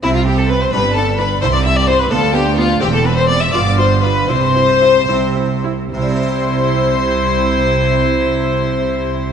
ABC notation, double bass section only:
X:1
M:6/8
L:1/8
Q:3/8=77
K:C
V:1 name="Double bass section" clef=bass
C,,3 G,,,3 | C,,3 D,,3 | E,,,3 G,,,3 | C,,3 C,,3 |
C,,6- | C,,6 |]